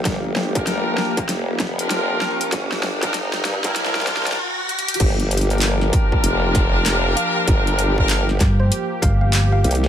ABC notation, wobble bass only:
X:1
M:4/4
L:1/8
Q:"Swing 16ths" 1/4=97
K:Gm
V:1 name="Wobble bass" clef=bass
G,,,3 z F,,,3 z | G,,,3 G,, C,,2 z2 | G,,,3 z F,,,3 z | G,,,3 z4 C,, |]